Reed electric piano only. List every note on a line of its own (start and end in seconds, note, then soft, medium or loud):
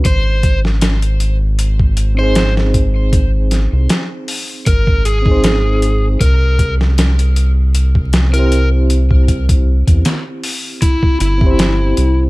2.15 5.19 C4 medium
2.15 5.21 D#4 medium
2.21 5.22 G#4 medium
2.21 5.24 C5 medium
5.22 6.17 C4 medium
5.22 6.18 D#4 medium
5.28 6.20 G#4 medium
5.28 6.21 C5 medium
8.30 11.35 C4 medium
8.30 11.36 E4 medium
8.36 11.38 G4 medium
8.36 11.39 C5 medium
11.38 12.30 C4 medium
11.38 12.30 E4 medium
11.44 12.30 G4 medium
11.44 12.30 C5 medium